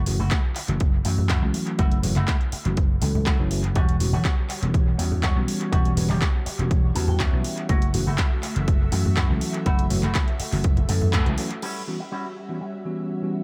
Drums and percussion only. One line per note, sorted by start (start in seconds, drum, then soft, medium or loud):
0.06 open hi-hat loud
0.06 low conga medium
0.20 high conga medium
0.31 kick loud
0.31 clap loud
0.31 closed hi-hat medium
0.56 clap soft
0.56 open hi-hat loud
0.68 closed hi-hat soft
0.80 kick loud
0.80 closed hi-hat medium
1.05 open hi-hat loud
1.18 low conga medium
1.29 kick loud
1.29 clap loud
1.29 closed hi-hat medium
1.54 open hi-hat loud
1.67 closed hi-hat soft
1.79 kick loud
1.79 closed hi-hat medium
1.92 closed hi-hat soft
2.03 open hi-hat loud
2.03 low conga medium
2.16 clap soft
2.16 closed hi-hat soft
2.16 high conga medium
2.28 kick loud
2.28 clap loud
2.28 closed hi-hat medium
2.41 closed hi-hat soft
2.52 open hi-hat loud
2.65 closed hi-hat soft
2.77 kick loud
2.77 closed hi-hat medium
3.02 open hi-hat loud
3.02 high conga medium
3.15 low conga medium
3.26 kick loud
3.26 clap loud
3.26 closed hi-hat medium
3.51 open hi-hat loud
3.64 closed hi-hat soft
3.76 kick loud
3.76 closed hi-hat medium
3.89 closed hi-hat soft
4.00 open hi-hat loud
4.00 low conga medium
4.13 high conga medium
4.25 kick loud
4.25 clap loud
4.25 closed hi-hat medium
4.50 clap soft
4.50 open hi-hat loud
4.63 closed hi-hat soft
4.74 kick loud
4.74 closed hi-hat medium
4.99 open hi-hat loud
5.12 low conga medium
5.23 kick loud
5.23 clap loud
5.23 closed hi-hat medium
5.48 open hi-hat loud
5.61 closed hi-hat soft
5.73 kick loud
5.73 closed hi-hat medium
5.85 closed hi-hat soft
5.97 open hi-hat loud
5.97 low conga medium
6.10 clap soft
6.10 high conga medium
6.22 kick loud
6.22 clap loud
6.22 closed hi-hat medium
6.46 open hi-hat medium
6.59 closed hi-hat soft
6.71 kick loud
6.71 closed hi-hat medium
6.95 open hi-hat loud
6.95 high conga medium
7.08 low conga medium
7.20 kick medium
7.20 clap loud
7.20 closed hi-hat medium
7.44 open hi-hat medium
7.58 closed hi-hat soft
7.69 kick loud
7.69 closed hi-hat medium
7.82 closed hi-hat soft
7.94 open hi-hat loud
7.94 low conga medium
8.07 high conga medium
8.18 kick loud
8.18 clap loud
8.18 closed hi-hat medium
8.43 clap soft
8.43 open hi-hat loud
8.56 closed hi-hat medium
8.68 kick loud
8.68 closed hi-hat medium
8.92 open hi-hat loud
9.05 low conga medium
9.17 kick medium
9.17 clap loud
9.17 closed hi-hat medium
9.41 open hi-hat medium
9.54 closed hi-hat soft
9.66 kick loud
9.66 closed hi-hat medium
9.79 closed hi-hat medium
9.90 open hi-hat loud
9.90 low conga medium
10.03 clap soft
10.03 closed hi-hat soft
10.03 high conga medium
10.15 kick loud
10.15 clap loud
10.15 closed hi-hat medium
10.28 closed hi-hat soft
10.40 open hi-hat loud
10.52 open hi-hat medium
10.64 kick loud
10.64 closed hi-hat medium
10.77 closed hi-hat soft
10.77 low conga medium
10.89 open hi-hat loud
10.89 high conga medium
11.02 low conga medium
11.13 kick medium
11.13 clap loud
11.13 closed hi-hat medium
11.26 closed hi-hat soft
11.38 open hi-hat loud
11.51 closed hi-hat soft
11.62 crash medium